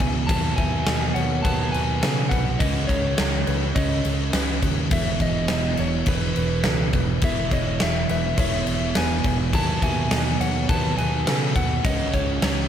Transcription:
Already playing: overdriven electric guitar E2 B2 E3, felt piano B4, electric slide guitar G#5
0.00 fingered electric bass C#2, kick, crash
0.27 fingered electric bass D#2, overdriven electric guitar B2 F#3 B3, electric slide guitar A5, kick, crash
0.56 fingered electric bass D#2, felt piano E5, electric slide guitar G#5, kick, crash
0.86 fingered electric bass D#2, felt piano D#5, snare, crash
1.14 fingered electric bass D#2, felt piano C#5, electric slide guitar F#5, crash
1.42 fingered electric bass D#2, overdriven electric guitar B2 F#3, felt piano B4, electric slide guitar A5, kick, crash
1.47 overdriven electric guitar B3
1.72 fingered electric bass D#2, felt piano B4, electric slide guitar G#5, crash
2.01 fingered electric bass C#3, felt piano A4, snare, crash
2.29 fingered electric bass C2, felt piano B4, electric slide guitar F#5, kick, crash
2.59 fingered electric bass C#2, overdriven electric guitar C#3 G#3 C#4, electric slide guitar D#5, kick, crash
2.87 fingered electric bass C#2, electric slide guitar C#5, felt piano C#5, kick, crash
3.17 fingered electric bass C#2, electric slide guitar C#5, snare, crash
3.47 fingered electric bass C#2, felt piano B4, crash
3.75 fingered electric bass C#2, overdriven electric guitar C#3 G#3 C#4, felt piano C#5, electric slide guitar D#5, kick, crash
4.05 fingered electric bass C#2, crash
4.33 fingered electric bass C#2, felt piano B4, snare, crash
4.63 fingered electric bass D#2, kick, crash
4.90 fingered electric bass E1, overdriven electric guitar E2 B2 E3, electric slide guitar E5, kick, crash
5.20 fingered electric bass E1, electric slide guitar D#5, felt piano E5, kick, crash
5.48 fingered electric bass E1, felt piano D#5, snare, crash
5.77 fingered electric bass E1, electric slide guitar C#5, felt piano C#5, crash
6.06 fingered electric bass E1, overdriven electric guitar E2 B2 E3, felt piano B4, electric slide guitar B4, kick, crash
6.36 fingered electric bass E1, felt piano B4, crash
6.64 fingered electric bass C#2, felt piano A4, snare, crash
6.93 fingered electric bass E1, felt piano B4, kick, crash
7.22 fingered electric bass E1, overdriven electric guitar E2 B2 E3, electric slide guitar E5, kick, crash
7.51 fingered electric bass E1, felt piano C#5, electric slide guitar D#5, kick, crash
7.80 fingered electric bass E1, electric slide guitar E5, snare, crash
8.09 fingered electric bass E1, felt piano B4, electric slide guitar E5, crash
8.37 fingered electric bass E1, overdriven electric guitar E2 B2 E3, felt piano C#5, electric slide guitar E5, kick, crash
8.67 fingered electric bass E1, crash
8.95 fingered electric bass E1, felt piano B4, electric slide guitar G#5, snare, crash
9.24 fingered electric bass E1, kick, crash
9.53 fingered electric bass D#2, overdriven electric guitar B2 F#3 B3, electric slide guitar A5, kick, crash
9.82 fingered electric bass D#2, felt piano E5, electric slide guitar G#5, kick, crash
10.11 fingered electric bass D#2, felt piano D#5, snare, crash
10.40 fingered electric bass D#2, felt piano C#5, electric slide guitar F#5, crash
10.68 fingered electric bass D#2, overdriven electric guitar B2 F#3 B3, felt piano B4, electric slide guitar A5, kick, crash
10.98 fingered electric bass D#2, felt piano B4, electric slide guitar G#5, crash
11.27 fingered electric bass C#3, felt piano A4, snare, crash
11.56 fingered electric bass D#2, felt piano B4, electric slide guitar F#5, kick, crash
11.83 fingered electric bass C#2, overdriven electric guitar C#3 G#3 C#4, electric slide guitar D#5, kick, crash
12.13 fingered electric bass C#2, felt piano C#5, electric slide guitar C#5, kick, crash
12.42 fingered electric bass C#2, electric slide guitar C#5, snare, crash

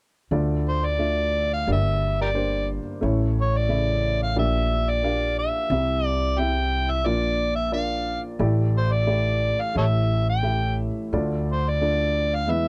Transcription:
0.31 upright bass D2, upright piano D2 D3 A3 D4 F4 D5
0.69 harmonica C5
0.86 harmonica D5
0.99 upright piano A3 D4 F4 E5
1.54 harmonica F5
1.67 upright bass G1, upright piano G1 G2 A#3 D4 G4 D5
1.72 harmonica E5
2.22 harmonica G4 A#4 D5
2.34 upright piano A#3 D4 G4 C5
3.01 upright piano A1 A2 A3 C#4 E4 C#5, upright bass A1
3.41 harmonica C#5
3.57 harmonica D5
3.69 upright piano C#3 A3 E4 E5
4.23 harmonica F5
4.36 upright bass A#1, upright piano A#1 A#2 A#3 D4 G4 D5, harmonica E5
4.89 harmonica D5
5.03 upright piano A#3 D4 G4 F5
5.39 harmonica E5
5.70 upright bass C2, upright piano C2 C3 C4 E4 G4 E5
6.06 harmonica D5
6.38 upright piano C4 E4 G4 E5, harmonica G5
6.91 harmonica E5
7.05 upright bass A#1, upright piano A#1 A#2 A#3 D4 F4 D5, harmonica D5
7.56 harmonica E5
7.72 upright piano A#3 D4 F4 D5, harmonica F5
8.39 upright piano A1 A2 A3 E4 G4 D5, upright bass A1
8.78 harmonica C5
8.92 harmonica D5
9.07 upright piano A3 E4 G4 D5
9.61 harmonica F5
9.74 upright piano A1 A2 A3 E4 G4 C#5, upright bass A1, harmonica A4 C#5 E5
10.29 harmonica G5
10.43 upright piano A3 E4 G4 E5
11.13 upright bass D2, upright piano D2 D3 A3 D4 F4 D5
11.52 harmonica C5
11.69 harmonica D5
11.81 upright piano A3 D4 F4 D5
12.35 harmonica F5
12.47 upright bass E2, upright piano E2 E3 G#3 B3 E4 B4, harmonica E5

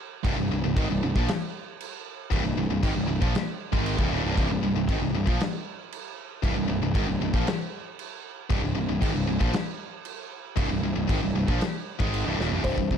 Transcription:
0.25 picked electric bass C1, distorted electric guitar C2 G2, kick, crash
0.37 picked electric bass C1, distorted electric guitar C2 G2
0.51 picked electric bass C1, distorted electric guitar C2 G2
0.64 picked electric bass C1, distorted electric guitar C2 G2
0.76 picked electric bass G#1, distorted electric guitar G#2 D#3, kick, crash
0.90 picked electric bass C1, distorted electric guitar C2 G2
1.03 picked electric bass C1, distorted electric guitar C2 G2
1.15 picked electric bass A#1, distorted electric guitar A#2 F3, kick
1.28 snare, crash
1.81 crash
2.31 picked electric bass C1, distorted electric guitar C2 G2, kick, crash
2.43 picked electric bass C1, distorted electric guitar C2 G2
2.56 picked electric bass C1, distorted electric guitar C2 G2
2.69 picked electric bass C1, distorted electric guitar C2 G2
2.82 picked electric bass G#1, distorted electric guitar G#2 D#3, kick, crash
2.96 picked electric bass C1, distorted electric guitar C2 G2
3.07 picked electric bass C1, distorted electric guitar C2 G2
3.21 picked electric bass A#1, distorted electric guitar A#2 F3, kick
3.35 snare, crash
3.72 picked electric bass G#1, distorted electric guitar G#2 D#3 G#3, kick
3.86 crash
3.98 picked electric bass C1, distorted electric guitar C2 G2, kick
4.11 picked electric bass D#1, distorted electric guitar D#2 A#2
4.23 picked electric bass C1, distorted electric guitar C2 G2
4.36 picked electric bass C1, distorted electric guitar C2 G2, kick, crash
4.49 picked electric bass C1, distorted electric guitar C2 G2
4.62 picked electric bass C1, distorted electric guitar C2 G2
4.74 picked electric bass C1, distorted electric guitar C2 G2
4.89 picked electric bass G#1, distorted electric guitar G#2 D#3, kick, crash
4.99 picked electric bass C1, distorted electric guitar C2 G2
5.12 picked electric bass C1, distorted electric guitar C2 G2
5.25 picked electric bass A#1, distorted electric guitar A#2 F3, kick
5.40 snare, crash
5.92 crash
6.43 picked electric bass C1, distorted electric guitar C2 G2, kick, crash
6.55 picked electric bass C1, distorted electric guitar C2 G2
6.68 picked electric bass C1, distorted electric guitar C2 G2
6.81 picked electric bass C1, distorted electric guitar C2 G2
6.95 picked electric bass G#1, distorted electric guitar G#2 D#3, kick, crash
7.08 picked electric bass C1, distorted electric guitar C2 G2
7.21 picked electric bass C1, distorted electric guitar C2 G2
7.33 picked electric bass A#1, distorted electric guitar A#2 F3, kick
7.47 snare, crash
7.99 crash
8.50 picked electric bass C1, distorted electric guitar C2 G2, kick, crash
8.63 picked electric bass C1, distorted electric guitar C2 G2
8.75 picked electric bass C1, distorted electric guitar C2 G2
8.89 picked electric bass C1, distorted electric guitar C2 G2
9.01 picked electric bass G#1, distorted electric guitar G#2 D#3, kick, crash
9.15 picked electric bass C1, distorted electric guitar C2 G2
9.27 picked electric bass C1, distorted electric guitar C2 G2
9.39 picked electric bass A#1, distorted electric guitar A#2 F3, kick
9.53 snare, crash
10.05 crash
10.56 picked electric bass C1, distorted electric guitar C2 G2, kick, crash
10.70 picked electric bass C1, distorted electric guitar C2 G2
10.83 picked electric bass C1, distorted electric guitar C2 G2
10.96 picked electric bass C1, distorted electric guitar C2 G2
11.08 picked electric bass G#1, distorted electric guitar G#2 D#3, kick, crash
11.22 picked electric bass C1, distorted electric guitar C2 G2
11.35 picked electric bass C1, distorted electric guitar C2 G2
11.48 picked electric bass A#1, distorted electric guitar A#2 F3, kick
11.61 snare, crash
11.99 picked electric bass G#1, distorted electric guitar G#2 D#3 G#3, kick
12.14 crash
12.26 picked electric bass C1, distorted electric guitar C2 G2
12.39 picked electric bass D#1, distorted electric guitar D#2 A#2, snare
12.52 picked electric bass C1, distorted electric guitar C2 G2, floor tom
12.64 picked electric bass C1, distorted electric guitar C2 G2, kalimba C5, kick, open hi-hat
12.78 picked electric bass C1, distorted electric guitar C2 G2, kick
12.91 picked electric bass C1, distorted electric guitar C2 G2, kick

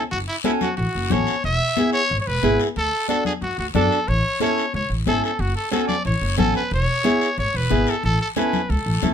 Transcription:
0.11 upright bass F#1, trumpet F#4, high conga, long guiro
0.28 trumpet E4
0.44 nylon-string guitar C#4 F#4 A4, trumpet E4, high conga, short guiro
0.61 trumpet F#4, low conga, short guiro
0.77 upright bass A1, trumpet F#4, high conga, long guiro
0.95 upright bass F#1
1.10 upright bass A1, nylon-string guitar C#4 F#4 A4, trumpet C#5, high conga, low conga, short guiro
1.27 short guiro
1.44 upright bass E1, trumpet E5, high conga, long guiro
1.77 nylon-string guitar B3 E4 G#4, high conga, short guiro
1.93 trumpet C#5, short guiro
2.10 upright bass G#1, high conga, long guiro
2.20 trumpet C#5
2.27 upright bass E1, trumpet B4
2.43 upright bass G#1, nylon-string guitar B3 E4 G#4, high conga, short guiro
2.60 short guiro
2.76 upright bass D2, trumpet A4, high conga, long guiro
3.08 nylon-string guitar D4 F#4 A4, trumpet A4, high conga, short guiro
3.25 trumpet G#4, low conga, short guiro
3.41 upright bass F#2, trumpet F#4, high conga, long guiro
3.58 upright bass D2, trumpet F#4
3.75 upright bass F#2, nylon-string guitar D4 F#4 A4, trumpet A4, high conga, low conga, short guiro
3.92 short guiro
4.08 upright bass A1, trumpet C#5, high conga, long guiro
4.40 nylon-string guitar C#4 E4 A4, trumpet C#5, high conga, short guiro
4.58 short guiro
4.73 upright bass C#2, trumpet C#5, high conga, long guiro
4.89 upright bass A1
5.06 upright bass G#1, nylon-string guitar C#4 E4 A4, trumpet A4, high conga, short guiro
5.24 trumpet A4, short guiro
5.39 upright bass F#1, trumpet F#4, high conga, long guiro
5.56 trumpet A4
5.71 nylon-string guitar C#4 F#4 A4, trumpet A4, high conga, short guiro
5.88 trumpet D5, low conga, short guiro
6.05 upright bass A1, trumpet C#5, high conga, long guiro
6.21 upright bass F#1
6.37 upright bass A1, nylon-string guitar C#4 F#4 A4, trumpet A4, high conga, low conga, short guiro
6.54 trumpet B4, short guiro
6.71 upright bass E1, trumpet C#5, high conga, long guiro
7.04 nylon-string guitar B3 E4 G#4, high conga, short guiro
7.21 short guiro
7.38 upright bass G#1, trumpet C#5, high conga, long guiro
7.54 upright bass E1, trumpet B4
7.70 upright bass G#1, nylon-string guitar B3 E4 G#4, high conga, short guiro
7.87 trumpet A4, short guiro
8.03 upright bass A1, trumpet A4, high conga, long guiro
8.21 trumpet A4
8.36 nylon-string guitar C#4 E4 A4, trumpet B4, high conga, short guiro
8.53 low conga, short guiro
8.69 upright bass C#2, trumpet A4, high conga, long guiro
8.86 upright bass A1
9.02 upright bass C#2, nylon-string guitar C#4 E4 A4, high conga, low conga, short guiro

